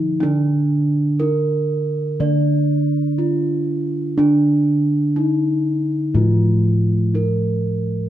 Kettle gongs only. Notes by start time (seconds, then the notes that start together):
Already playing: D3
0.23 D4
1.21 D#4
2.20 D3
3.18 D#4
4.18 D4
5.16 D#4
6.14 A2
7.14 D#4